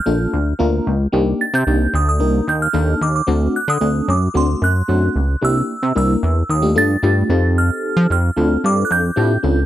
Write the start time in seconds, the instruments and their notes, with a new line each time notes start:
Already playing: synth bell F6
0.06 analog synth bass A#1, fm electric piano A#3 D4 F4 A4
0.33 analog synth bass D2
0.59 analog synth bass D2, fm electric piano A#3 D4 F4 A#4
0.87 analog synth bass C#2
1.12 analog synth bass C2, fm electric piano A#3 D4 D#4 G4
1.41 synth bell A6
1.54 analog synth bass C3, synth bell G6
1.67 analog synth bass C2, fm electric piano A#3 D4 D#4 G4
1.94 analog synth bass D2, synth bell D#6
2.09 synth bell D#6
2.20 analog synth bass C2, fm electric piano A#3 D4 D#4 A#4
2.48 analog synth bass D#2, synth bell G6
2.62 synth bell F6
2.73 analog synth bass D#2, fm electric piano A#3 D4 D#4 A4
3.01 analog synth bass D#2, synth bell D6
3.16 synth bell D6
3.27 analog synth bass D2, fm electric piano A3 C4 D4 F#4
3.56 synth bell F#6
3.68 analog synth bass D3, synth bell D#6
3.81 analog synth bass D2, fm electric piano A3 C4 D4 A4
4.08 analog synth bass F#2, synth bell D6
4.34 analog synth bass D2, fm electric piano A3 C4 D4 F#4, synth bell C6
4.62 analog synth bass F#2, synth bell F#6
4.88 analog synth bass F#2, fm electric piano A3 C4 D4 F#4
5.16 analog synth bass C#2
5.41 analog synth bass C2, fm electric piano A#3 D4 E4 G4, synth bell E6
5.83 analog synth bass C3
5.95 analog synth bass C2, fm electric piano A#3 D4 E4 A#4, synth bell E6
6.23 analog synth bass E2
6.49 analog synth bass D#2, synth bell D#6
6.62 fm electric piano A3 D4 F4 G4
6.75 analog synth bass G2, fm electric piano A3 D4 F4 A4, synth bell A6
7.03 analog synth bass G2, fm electric piano A3 D4 F4 G4
7.29 analog synth bass F2, fm electric piano C4 D#4 G4 A4
7.58 synth bell F6
7.97 analog synth bass F3
8.10 analog synth bass F2, synth bell F6
8.36 analog synth bass D2, fm electric piano C4 D4 F4 A4
8.64 analog synth bass G2, synth bell D6
8.85 synth bell F#6
8.91 analog synth bass F2, synth bell G6
9.16 analog synth bass A2, fm electric piano C4 D4 F4 G4
9.43 analog synth bass C#2, fm electric piano C4 D4 F4 A4